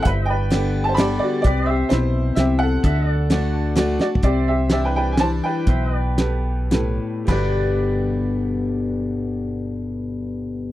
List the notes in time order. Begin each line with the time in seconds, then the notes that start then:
0.03 G1 G2 C5 F#5, kick, closed hi-hat
0.07 B4 E5
0.26 B4 G5
0.30 B4 D5
0.50 D3 G3 B3 D4 G4 B4, snare, closed hi-hat
0.84 A5
0.89 C5
0.95 D3 G3 B3 D4 B5, snare, closed hi-hat
0.99 G4 A4 D5
1.19 D5
1.23 F#4
1.42 C2 C3 B4 D5, kick, closed hi-hat
1.46 G4
1.65 C5 E5
1.70 G4 E5
1.89 B1 B2 E4 G4 C5, snare, closed hi-hat
2.35 C2 C3 E4 G4 C5 E5, snare, closed hi-hat
2.39 G4
2.59 A4 F#5
2.84 D2 D3 A4 E5, kick, closed hi-hat
3.10 D5
3.29 D3 A3 D4 F#4 A4 D5, snare, closed hi-hat
3.53 A5
3.75 D3 A3 D4 F#4 A4 D5 F#5, snare, closed hi-hat
3.99 D4 F#4 D5, snare
4.15 floor tom
4.23 C2 C3 G4 C5 D5 E5, kick, closed hi-hat
4.48 G4 E5
4.69 E3 G3 D4 E4 G4 C5 D5 E5, snare, closed hi-hat
4.85 B4 G5
4.96 B4 G5
5.12 G#5
5.17 E3 G3 D4 E4 C5 D5 A5, snare, closed hi-hat
5.44 B4 G5
5.67 B1 B2 C5 E5, kick, closed hi-hat
5.86 D#5
5.91 B4
5.98 D5
6.18 B2 G4 A4 B4, snare, closed hi-hat
6.71 A2 G4 A4 B4, snare, closed hi-hat
7.25 G1 G2 B2 D3 G4 B4 B5, kick, crash
7.29 G3 B3 G4 B4 D5